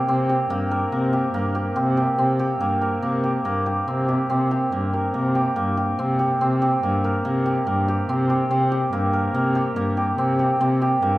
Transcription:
0.00 0.50 A#3 medium
0.00 0.29 G4 medium
0.00 0.71 A#4 medium
0.08 0.48 C3 medium
0.08 1.75 C4 medium
0.29 1.13 G4 medium
0.50 0.89 G2 medium
0.50 0.92 A#3 medium
0.71 2.81 A#4 medium
0.92 1.31 C3 medium
0.92 1.34 A#3 medium
1.13 1.54 G4 medium
1.34 1.73 G2 medium
1.34 2.60 A#3 medium
1.55 1.97 G4 medium
1.76 2.15 C3 medium
1.76 2.18 C4 medium
1.97 2.39 G4 medium
2.18 2.57 C3 medium
2.18 3.87 C4 medium
2.39 3.23 G4 medium
2.60 2.99 G2 medium
2.60 3.02 A#3 medium
2.81 4.93 A#4 medium
3.02 3.42 C3 medium
3.02 3.45 A#3 medium
3.24 3.66 G4 medium
3.45 3.85 G2 medium
3.45 4.72 A#3 medium
3.66 4.08 G4 medium
3.88 4.28 C3 medium
3.88 4.29 C4 medium
4.09 4.51 G4 medium
4.30 4.70 C3 medium
4.30 5.98 C4 medium
4.51 5.35 G4 medium
4.72 5.12 G2 medium
4.72 5.13 A#3 medium
4.93 7.04 A#4 medium
5.14 5.55 C3 medium
5.14 5.56 A#3 medium
5.35 5.77 G4 medium
5.56 5.97 G2 medium
5.56 6.83 A#3 medium
5.77 6.19 G4 medium
5.99 6.38 C3 medium
5.99 6.41 C4 medium
6.19 6.61 G4 medium
6.41 6.81 C3 medium
6.41 8.09 C4 medium
6.62 7.45 G4 medium
6.83 7.22 G2 medium
6.83 7.25 A#3 medium
7.04 9.13 A#4 medium
7.25 7.64 C3 medium
7.25 7.66 A#3 medium
7.46 7.88 G4 medium
7.67 8.06 G2 medium
7.67 8.92 A#3 medium
7.88 8.29 G4 medium
8.09 8.48 C3 medium
8.09 8.50 C4 medium
8.30 8.71 G4 medium
8.51 8.90 C3 medium
8.51 10.18 C4 medium
8.72 9.55 G4 medium
8.93 9.32 G2 medium
8.93 9.34 A#3 medium
9.13 11.18 A#4 medium
9.35 9.73 C3 medium
9.35 9.76 A#3 medium
9.55 9.97 G4 medium
9.76 10.15 G2 medium
9.76 11.02 A#3 medium
9.97 10.39 G4 medium
10.18 10.57 C3 medium
10.18 10.60 C4 medium
10.39 10.81 G4 medium
10.60 11.00 C3 medium
10.60 11.18 C4 medium
10.82 11.18 G4 medium
11.02 11.18 G2 medium
11.02 11.18 A#3 medium

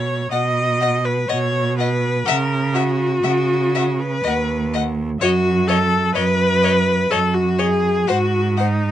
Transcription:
0.00 0.20 B2 medium
0.00 0.31 C#5 loud
0.31 1.18 B2 medium
0.31 1.06 D#5 loud
0.31 0.40 D#5 medium
0.31 0.39 F#5 medium
0.80 0.90 D#5 medium
0.80 0.88 F#5 medium
1.04 1.30 B4 medium
1.28 2.16 B2 medium
1.28 1.77 C#5 loud
1.28 1.37 D#5 medium
1.28 1.37 F#5 medium
1.78 2.28 B4 medium
1.78 1.88 D#5 medium
1.78 1.86 F#5 medium
2.26 3.12 C#3 loud
2.26 2.75 A#4 medium
2.26 2.36 E5 medium
2.26 2.34 F#5 medium
2.73 4.01 F#4 loud
2.73 2.83 E5 medium
2.73 2.82 F#5 medium
3.23 4.14 C#3 medium
3.23 3.32 E5 medium
3.23 3.32 F#5 medium
3.75 3.83 E5 medium
3.75 3.84 F#5 medium
3.99 4.73 B4 loud
4.24 5.10 D#2 medium
4.24 4.32 D#5 medium
4.24 4.34 F#5 medium
4.74 4.82 D#5 medium
4.74 4.83 F#5 medium
5.20 6.05 F#2 medium
5.20 5.69 F#4 loud
5.20 5.29 C#5 medium
5.20 5.31 D#5 medium
5.68 6.14 A4 loud
5.68 5.76 C#5 medium
5.68 5.77 D#5 medium
6.15 7.00 F#2 medium
6.15 7.12 B4 loud
6.15 6.23 C#5 medium
6.15 6.23 D#5 medium
6.63 6.72 C#5 medium
6.63 6.71 D#5 medium
7.11 7.97 F#2 medium
7.11 7.36 A4 loud
7.11 7.19 C#5 medium
7.11 7.19 D#5 medium
7.34 7.60 F#4 loud
7.59 8.09 G#4 loud
7.59 7.67 C#5 medium
7.59 7.67 D#5 medium
8.07 8.91 G#2 medium
8.07 8.59 F#4 loud
8.07 8.17 C5 medium
8.07 8.15 F#5 medium
8.57 8.91 D#4 loud
8.57 8.67 C5 medium
8.57 8.65 F#5 medium

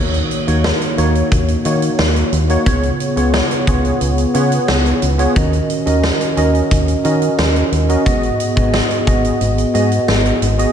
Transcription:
0.00 0.21 D#2 loud
0.00 0.94 D#3 medium
0.00 0.36 A#3 medium
0.00 0.36 D#4 medium
0.00 0.37 F#4 medium
0.00 0.37 C#5 medium
0.14 closed hi-hat soft
0.31 closed hi-hat medium
0.47 0.72 D#2 medium
0.47 0.87 A#3 medium
0.47 0.87 D#4 medium
0.47 0.87 F#4 medium
0.47 0.87 C#5 medium
0.47 closed hi-hat medium
0.64 snare loud
0.81 closed hi-hat soft
0.97 1.22 D#2 medium
0.97 1.50 A#3 medium
0.97 1.50 D#4 medium
0.97 1.51 F#4 medium
0.97 1.51 C#5 medium
0.97 closed hi-hat medium
1.15 closed hi-hat soft
1.32 1.56 D#2 loud
1.32 kick medium
1.32 closed hi-hat medium
1.48 closed hi-hat soft
1.65 1.90 D#3 medium
1.65 2.31 A#3 medium
1.65 2.31 D#4 medium
1.65 2.31 F#4 medium
1.65 2.31 C#5 medium
1.65 closed hi-hat medium
1.82 closed hi-hat medium
1.99 2.23 D#2 loud
1.99 snare loud
2.16 closed hi-hat soft
2.32 2.57 D#2 loud
2.32 closed hi-hat medium
2.49 2.63 A#3 medium
2.49 2.63 D#4 medium
2.49 2.63 F#4 medium
2.49 2.63 C#5 medium
2.49 closed hi-hat soft
2.66 2.91 C#2 loud
2.66 3.64 C#3 medium
2.66 3.06 B3 medium
2.66 3.06 F4 medium
2.66 3.06 G#4 medium
2.66 3.06 C#5 medium
2.66 kick medium
2.66 closed hi-hat medium
2.83 closed hi-hat soft
3.00 closed hi-hat medium
3.16 3.41 C#2 loud
3.16 3.56 B3 medium
3.16 3.56 F4 medium
3.16 3.57 G#4 medium
3.16 3.57 C#5 medium
3.16 closed hi-hat medium
3.34 snare loud
3.51 closed hi-hat soft
3.67 3.92 C#2 medium
3.67 4.20 B3 medium
3.67 4.20 F4 medium
3.67 4.20 G#4 medium
3.67 4.21 C#5 medium
3.67 kick medium
3.67 closed hi-hat medium
3.85 closed hi-hat soft
4.01 4.25 C#2 loud
4.01 closed hi-hat medium
4.18 closed hi-hat soft
4.34 4.59 C#3 medium
4.34 5.00 B3 medium
4.34 5.01 F4 medium
4.34 5.01 G#4 medium
4.34 5.01 C#5 medium
4.34 closed hi-hat medium
4.52 closed hi-hat medium
4.68 4.93 C#2 medium
4.68 snare loud
4.86 closed hi-hat soft
5.02 5.27 C#2 loud
5.02 closed hi-hat medium
5.18 5.32 B3 medium
5.18 5.32 F4 medium
5.18 5.32 G#4 medium
5.18 5.33 C#5 medium
5.18 closed hi-hat medium
5.35 5.60 D#2 loud
5.35 6.33 D#3 medium
5.35 5.75 C#4 medium
5.35 5.75 F#4 medium
5.35 5.76 A#4 medium
5.35 5.76 D#5 medium
5.35 kick loud
5.35 closed hi-hat medium
5.53 closed hi-hat soft
5.70 closed hi-hat medium
5.86 6.11 D#2 loud
5.86 6.26 C#4 medium
5.86 6.26 F#4 medium
5.86 6.26 A#4 medium
5.86 6.26 D#5 medium
5.86 closed hi-hat medium
6.04 snare loud
6.21 closed hi-hat soft
6.37 6.62 D#2 loud
6.37 6.90 C#4 medium
6.37 6.90 F#4 medium
6.37 6.90 A#4 medium
6.37 6.90 D#5 medium
6.37 closed hi-hat medium
6.55 closed hi-hat soft
6.71 6.95 D#2 medium
6.71 kick medium
6.71 closed hi-hat medium
6.88 closed hi-hat soft
7.04 7.29 D#3 medium
7.04 7.70 C#4 medium
7.04 7.70 F#4 medium
7.04 7.71 A#4 medium
7.04 7.71 D#5 medium
7.04 closed hi-hat medium
7.22 closed hi-hat medium
7.38 7.63 D#2 medium
7.38 snare loud
7.56 closed hi-hat soft
7.72 7.96 D#2 loud
7.72 closed hi-hat medium
7.89 8.02 C#4 medium
7.89 8.02 F#4 medium
7.89 8.02 A#4 medium
7.89 8.03 D#5 medium
7.89 closed hi-hat soft
8.05 8.30 G#1 loud
8.05 9.03 G#2 medium
8.05 8.45 B3 medium
8.05 8.45 F#4 medium
8.05 8.45 G#4 medium
8.05 8.46 D#5 medium
8.05 kick loud
8.05 closed hi-hat medium
8.23 closed hi-hat soft
8.40 closed hi-hat medium
8.56 8.81 G#1 loud
8.56 8.96 B3 medium
8.56 8.96 F#4 medium
8.56 8.96 G#4 medium
8.56 8.96 D#5 medium
8.56 kick medium
8.56 closed hi-hat medium
8.74 snare loud
8.90 closed hi-hat soft
9.06 9.31 G#1 medium
9.06 9.59 B3 medium
9.06 9.59 F#4 medium
9.06 9.60 G#4 medium
9.06 9.60 D#5 medium
9.06 kick medium
9.06 closed hi-hat medium
9.24 closed hi-hat soft
9.41 9.65 G#1 loud
9.41 closed hi-hat medium
9.58 closed hi-hat soft
9.74 9.99 G#2 medium
9.74 10.40 B3 medium
9.74 10.40 F#4 medium
9.74 10.40 G#4 medium
9.74 10.40 D#5 medium
9.74 closed hi-hat medium
9.92 closed hi-hat medium
10.08 10.33 G#1 loud
10.08 snare loud
10.26 closed hi-hat soft
10.42 10.66 G#1 loud
10.42 closed hi-hat medium
10.58 10.72 B3 medium
10.58 10.72 F#4 medium
10.58 10.72 G#4 medium
10.58 10.72 D#5 medium
10.58 closed hi-hat medium

